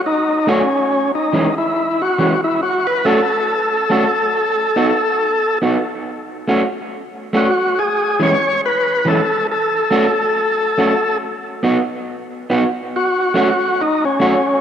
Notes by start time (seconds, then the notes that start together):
0.06 D#4
0.47 A3 C#4 F#4
1.15 D#4
1.33 E3 G#3 C#4
1.58 E4
2.02 F#4
2.18 E3 G#3 C#4
2.44 E4
2.63 F#4
2.87 B4
3.05 A3 C#4 F#4 A4
3.90 A3 C#4 F#4
4.76 B3 D#4 F#4
5.62 B3 D#4 F#4
6.48 A3 C#4 F#4
7.33 A3 C#4 F#4
7.79 G#4
8.20 E3 G#3 C#4 C#5
8.66 B4
9.05 E3 G#3 C#4 A4
9.51 A4
9.91 A3 C#4 F#4
10.78 A3 C#4 F#4
11.63 B3 D#4 F#4
12.50 B3 D#4 F#4
12.96 F#4
13.34 A3 C#4 F#4
13.81 D#4
14.05 C#4
14.20 A3 C#4 F#4